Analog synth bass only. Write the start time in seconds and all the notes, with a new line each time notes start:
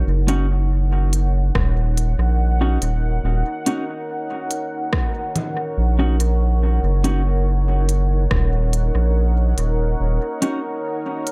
0.07 F#1
1.55 D#1
2.18 A#1
2.82 D#1
3.24 D#1
5.78 A#1
6.83 F#1
8.31 D#1
8.95 A#1
9.58 D#1
10.00 D#1